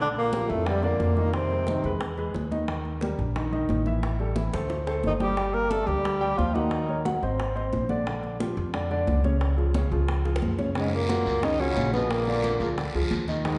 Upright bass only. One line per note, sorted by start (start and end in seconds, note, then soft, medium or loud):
0.00 0.44 A#1 medium
0.50 0.97 F2 medium
1.00 1.78 F2 medium
1.84 2.31 E2 medium
2.35 3.13 D#2 medium
3.19 3.66 A#1 medium
3.70 4.48 A1 medium
4.54 5.01 D2 medium
5.04 5.82 G1 medium
5.87 6.34 D2 medium
6.38 7.17 D#2 medium
7.23 7.70 G#1 medium
7.73 8.52 A#1 medium
8.57 9.04 F2 medium
9.07 9.86 C#2 medium
9.91 10.39 C#2 medium
10.43 11.21 F#2 medium
11.25 11.73 C#2 medium
11.77 12.55 A#1 medium
12.60 12.92 D2 medium
12.95 13.10 D2 medium
13.11 13.58 D#2 medium